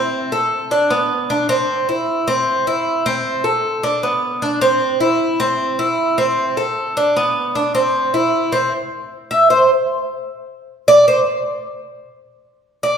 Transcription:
Already playing: C4
0.32 A4
0.71 D4
0.90 B3
1.30 D4
1.49 C4
1.89 E4
2.28 C4
2.67 E4
3.06 C4
3.44 A4
3.83 D4
4.03 B3
4.42 D4
4.61 C4
5.01 E4
5.40 C4
5.79 E4
6.18 C4
6.57 A4
6.97 D4
7.17 B3
7.55 D4
7.75 C4
8.14 E4
8.52 C4
9.31 E5
9.50 C5
10.88 D5
11.08 C5
12.83 D5

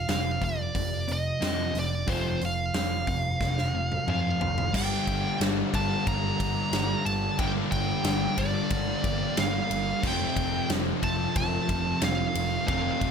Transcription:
0.08 F1 F2 C3 F5, snare, open hi-hat
0.41 F1 F2 C3 D5, kick, open hi-hat
0.75 F1 F2 C3, kick, open hi-hat
1.08 F2 C3, open hi-hat
1.13 D#5
1.40 F2 C3 F3, snare, open hi-hat
1.75 F1 F2 C3, snare, open hi-hat
1.79 D5
2.07 F1 F2 C3 F3 C5, kick, open hi-hat
2.40 F1 F2 C3, open hi-hat
2.45 F5
2.74 F1 F2 C3, snare, open hi-hat
3.07 F1 F2 C3, kick, open hi-hat
3.40 F1 F2 C3, kick, snare
3.58 snare
3.74 F2 C3
3.92 high tom
4.07 F2 C3 F3 F5, mid tom
4.41 F1 F2 C3, floor tom
4.58 floor tom
4.73 G1 G2 D3 G3 A#3 D4 G5, kick, crash
5.07 G1, kick, ride
5.40 G1, snare, ride
5.73 G1 D3 G3 A#3 D4 A5, kick, ride
5.78 G2
6.07 G1 A#5, kick, ride
6.40 G1, kick, ride
6.73 G1, snare, ride
7.06 G1 A5, ride
7.38 G1 G2 D3 A#3 D4 G5, kick, ride
7.42 G3
7.71 G1 G5, kick, ride
8.04 G1, snare, ride
8.37 G1 D3 G3 A#3 D4 D5, kick, ride
8.42 G2
8.70 G1, kick, ride
9.04 G1, kick, ride
9.37 G1 F5, snare, ride
9.70 G1, ride
10.03 F1 F2 C3 A3 C4, kick, crash
10.07 F3 G5
10.36 F1, kick, ride
10.70 F1, snare, ride
11.02 F1 C3 F3 A3 C4 A5, kick, ride
11.06 F2
11.36 F1 A5, kick, ride
11.69 F1, kick, ride
12.01 F1 F5, snare, ride
12.35 F1, ride
12.67 F1 F2 C3 F3 A3 C4 F5, kick, ride
13.01 F1, kick, ride

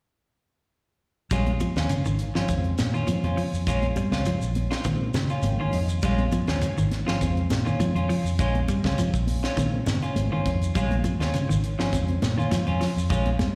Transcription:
1.31 A#1 G3 G#3 C#4 F4, kick, closed hi-hat, high conga, shekere
1.47 closed hi-hat, high conga
1.60 F3 G#3 C4, closed hi-hat, high conga, shekere
1.76 D#2 C#3 F3 G#3 C4 C#4 F4, snare, closed hi-hat, shekere
1.89 C#3, muted fingered electric bass stroke, closed hi-hat, high conga, shekere
2.05 G#1 D#3, shekere
2.19 closed hi-hat, shekere
2.35 F3 C#4 F4, snare
2.48 F2 C#3 F3 G#3 C4, kick, closed hi-hat, high conga, shekere
2.64 closed hi-hat
2.78 A#2, snare, closed hi-hat, high conga, shekere
2.94 D#3 C#4 F4, shekere
3.07 C#3 F3 G#3 C4, muted fingered electric bass stroke, closed hi-hat, high conga, shekere
3.24 F2 C#4 F4, closed hi-hat, high conga
3.37 F3, open hi-hat, shekere
3.53 F2, shekere
3.67 A#1 G#3 C#4 F4, kick, closed hi-hat, high conga, shekere
3.82 closed hi-hat, high conga
3.95 G3 G#3 C4, closed hi-hat, high conga, shekere
4.11 C#2 C#3 F3 G#3 C4 C#4 F4, snare, shekere
4.25 F3, closed hi-hat, high conga, shekere
4.41 A#1, shekere
4.55 closed hi-hat, high conga, shekere
4.71 F4, snare, closed hi-hat
4.84 A#2 C#3 D#3 F3 G#3 C4, kick, closed hi-hat, high conga, shekere
5.14 C#3, snare, closed hi-hat, high conga, shekere
5.29 C#4 F4, closed hi-hat, shekere
5.42 G#1 C#3 F3 G#3 A#3 G5, closed hi-hat, high conga, shekere
5.60 D#3 C#4 F4 F5
5.73 F2 D#5, open hi-hat, shekere
5.89 closed hi-hat, shekere
6.02 A#1 G3 G#3 C#4 F4, kick, closed hi-hat, high conga, shekere
6.18 closed hi-hat, high conga
6.32 F3 G#3 D#4, closed hi-hat, high conga, shekere
6.47 D#2 C#3 F3 G#3 C4 C#4 F4, snare, closed hi-hat, shekere
6.61 muted fingered electric bass stroke, muted clean electric guitar stroke, closed hi-hat, high conga, shekere
6.77 G#1 D#3, shekere
6.91 snare, closed hi-hat, high conga, shekere
7.07 F3 C#4 F4, snare
7.21 F2 C#3 F3 G#3 C4, kick, closed hi-hat, high conga, shekere
7.37 closed hi-hat
7.50 A#2, snare, closed hi-hat, high conga, shekere
7.65 D#3 C#4 F4, shekere
7.79 C#3 F3 G#3 C4, muted fingered electric bass stroke, closed hi-hat, high conga, shekere
7.95 F2 C#4 F4, closed hi-hat
8.09 F3, open hi-hat, shekere
8.24 F2, shekere
8.39 A#1 G#3 C#4 F4, kick, closed hi-hat, high conga, shekere
8.55 closed hi-hat, high conga
8.68 G3 G#3 C4, closed hi-hat, high conga, shekere
8.84 C#2 C#3 F3 G#3 C4 C#4 F4, kick, snare, shekere
8.98 F3, closed hi-hat, high conga, shekere
9.14 A#1, kick, shekere
9.27 open hi-hat, high conga, shekere
9.43 C#4 F4, snare, closed hi-hat
9.57 A#2 C#3 D#3 F3 G#3 C4, kick, closed hi-hat, shekere
9.86 C#3, snare, closed hi-hat, high conga, shekere
10.02 C#4 F4, closed hi-hat, shekere
10.16 G#1 C#3 F3 G#3 C4, closed hi-hat, high conga, shekere
10.32 D#3 C#4 F4
10.45 F2, kick, closed hi-hat, shekere
10.62 closed hi-hat, shekere
10.75 A#1 G3 G#3 C#4 F4, kick, closed hi-hat, high conga, shekere
10.91 closed hi-hat, high conga
11.04 F3 G#3 C4, closed hi-hat, high conga, shekere
11.19 D#2 C#3 F3 G#3 C4 C#4 F4, snare, closed hi-hat, shekere
11.34 C#3, muted fingered electric bass stroke, closed hi-hat, high conga, shekere
11.49 G#1 D#3, shekere
11.64 closed hi-hat, shekere
11.79 F3 C#4 F4, snare
11.92 F2 C#3 F3 G#3 C4, kick, closed hi-hat, high conga, shekere
12.08 closed hi-hat
12.22 A#2, snare, closed hi-hat, high conga, shekere
12.38 D#3 C#4 F4, shekere
12.51 C#3 F3 G#3 C4, muted fingered electric bass stroke, snare, closed hi-hat, high conga, shekere
12.67 F2 C#4 F4, closed hi-hat
12.81 F3, snare, open hi-hat, shekere
12.96 F2, shekere
13.10 A#1 G#3 C#4 F4, kick, closed hi-hat, high conga, shekere
13.26 closed hi-hat, high conga
13.39 G3 G#3 C4, snare, closed hi-hat, high conga, shekere

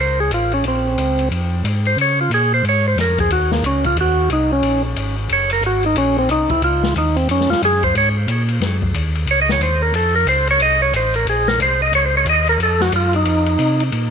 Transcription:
Already playing: C#2
0.00 C5
0.20 G#4
0.30 A1 F4, hi-hat pedal, ride
0.52 C#4, ride
0.64 A#1, ride
0.68 C4
0.97 C#2, hi-hat pedal, ride
1.19 ride
1.30 F2, ride
1.64 G#2, hi-hat pedal, ride
1.85 C5, ride
1.97 C#3, ride
2.01 C#5
2.21 F4
2.30 A#2, hi-hat pedal, ride
2.34 G#4
2.54 C5
2.63 G#2, ride
2.69 C#5
2.88 C5
2.96 F2, snare, hi-hat pedal, ride
3.01 A#4
3.18 G#4, kick, ride
3.29 D#2 F#4, ride
3.52 A#3, snare
3.63 C#2 C#4, hi-hat pedal, ride
3.84 F4, kick, ride
3.96 D#2, ride
4.01 F#4
4.29 C2 D#4, hi-hat pedal, ride
4.52 C#4
4.62 A#1, ride
4.96 G#1, hi-hat pedal, ride
5.29 F#1 C#5, ride
5.50 A#4, ride
5.62 G#1, hi-hat pedal
5.66 F#4
5.83 D#4, ride
5.95 A#1 C#4, ride
6.18 C4
6.28 C2 D#4, hi-hat pedal, ride
6.49 C2 E4, kick, ride
6.62 C#2 F4, ride
6.83 snare
6.95 D#2 D#4, hi-hat pedal, ride
7.16 C4, ride
7.28 F2 C#4, ride
7.41 snare
7.49 F2 F4, snare
7.62 F#2 G#4, hi-hat pedal, ride
7.83 C5, kick, ride
7.95 G#2 C#5, ride
8.28 A#2, hi-hat pedal, ride
8.48 ride
8.60 F#2, snare, ride
8.82 kick
8.94 D#2, hi-hat pedal, ride
9.15 ride
9.27 C#2, ride
9.31 C#5
9.42 D#5
9.49 C#5, snare
9.59 D#2 C5, hi-hat pedal, ride
9.82 A#4
9.92 F2 A4, ride
10.16 A#4
10.25 C#2 C5, hi-hat pedal, ride
10.47 C#5, ride
10.59 C2 D#5, ride
10.82 C#5
10.92 A1 C5, hi-hat pedal, ride
11.14 A#4, ride
11.26 A#1 G#4, ride
11.48 A#4, snare
11.59 C2 C5, hi-hat pedal, ride
11.82 D#5
11.92 C#2 C#5, ride
12.06 C5
12.17 C#5
12.25 D#2, hi-hat pedal, ride
12.29 D#5
12.47 A#4, ride
12.58 F2, ride
12.63 A4
12.80 F#4, snare
12.92 F#2 F4, hi-hat pedal, ride
13.13 D#4, ride
13.25 F2, ride
13.46 ride
13.59 C3, hi-hat pedal, ride
13.80 ride
13.92 A#2, ride

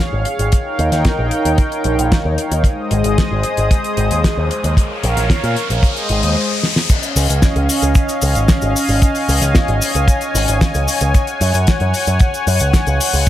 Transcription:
Already playing: G#4 C#5 F5
0.13 G#1
0.25 closed hi-hat
0.39 G#1, closed hi-hat
0.52 D#4 A#4 G5, kick, closed hi-hat
0.79 D#2, closed hi-hat
0.92 D#2, snare, closed hi-hat
1.05 kick, snare, closed hi-hat
1.19 A#1
1.31 closed hi-hat
1.45 D#2, closed hi-hat
1.58 kick, closed hi-hat
1.72 closed hi-hat
1.84 A#1, closed hi-hat
1.98 A#1, closed hi-hat
2.12 kick, snare, closed hi-hat
2.25 D#2
2.38 closed hi-hat
2.51 D#2, closed hi-hat
2.64 G#3 G#4 C5 D#5 D#6, kick, closed hi-hat, riser
2.91 G#1, closed hi-hat
3.04 G#1, closed hi-hat
3.18 kick, snare, closed hi-hat
3.31 G#1
3.43 closed hi-hat
3.57 G#1, closed hi-hat
3.71 kick, closed hi-hat
3.84 closed hi-hat
3.97 G#1, closed hi-hat
4.11 D#2, closed hi-hat
4.24 kick, snare, closed hi-hat
4.37 D#2
4.51 closed hi-hat
4.64 D#2, closed hi-hat
4.77 A#4 C#5 F5, kick, closed hi-hat
5.03 A#1, closed hi-hat
5.17 A#1, snare, closed hi-hat
5.30 kick, snare, closed hi-hat
5.43 A#2, closed hi-hat
5.56 closed hi-hat
5.70 A#1, closed hi-hat
5.83 G#3 G#4 C5 D#5 D#6, kick, closed hi-hat
5.97 closed hi-hat
6.09 G#1, closed hi-hat
6.23 D#2, closed hi-hat
6.63 snare
6.76 snare
6.89 C#4 C#5 D#5 F5 G#5, kick, closed hi-hat, crash, cabasa
7.03 closed hi-hat, cabasa
7.16 C#2, open hi-hat, cabasa
7.29 C#2, closed hi-hat, cabasa
7.42 kick, snare, closed hi-hat, cabasa
7.56 C#2, closed hi-hat
7.69 open hi-hat, cabasa
7.82 C#2, closed hi-hat, cabasa
7.95 kick, closed hi-hat, cabasa
8.09 closed hi-hat, cabasa
8.22 C#2, open hi-hat, cabasa
8.35 G#1, closed hi-hat, cabasa
8.48 kick, snare, closed hi-hat, cabasa
8.62 G#1, closed hi-hat, cabasa
8.76 open hi-hat, cabasa
8.88 G#1, open hi-hat, cabasa
9.02 kick, closed hi-hat, cabasa
9.15 open hi-hat, cabasa
9.29 C#2, open hi-hat, cabasa
9.41 C#2, snare, closed hi-hat, cabasa
9.55 kick, snare, closed hi-hat, cabasa
9.68 G#1, closed hi-hat
9.82 open hi-hat, cabasa
9.95 C#2, closed hi-hat, cabasa
10.08 kick, closed hi-hat, cabasa
10.21 closed hi-hat, cabasa
10.35 G#1, open hi-hat, cabasa
10.48 G#1, closed hi-hat, cabasa
10.61 kick, snare, closed hi-hat, cabasa
10.74 C#2, closed hi-hat, cabasa
10.88 open hi-hat, cabasa
11.01 C#2, closed hi-hat, cabasa
11.14 F#5, kick, closed hi-hat, cabasa
11.27 closed hi-hat, cabasa
11.41 F#2, open hi-hat, cabasa
11.54 F#2, closed hi-hat, cabasa
11.67 kick, snare, closed hi-hat, cabasa
11.80 F#2, closed hi-hat
11.94 open hi-hat, cabasa
12.07 F#2, closed hi-hat, cabasa
12.19 kick, closed hi-hat, cabasa
12.34 closed hi-hat, cabasa
12.47 F#2, open hi-hat, cabasa
12.59 C#2, closed hi-hat, cabasa
12.73 kick, snare, closed hi-hat, cabasa
12.87 C#2, closed hi-hat, cabasa
13.00 open hi-hat, cabasa
13.13 C#2, open hi-hat, cabasa

